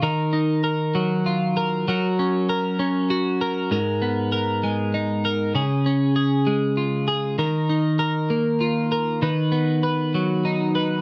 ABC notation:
X:1
M:6/8
L:1/8
Q:3/8=65
K:D#m
V:1 name="Clean electric guitar"
[D,A] D A F, E A | [F,A] C A C F A | [G,,A] B, A G, D A | [C,G] C G G, E G |
[D,A] D A A, E A | [D,B] B, B F, D B |]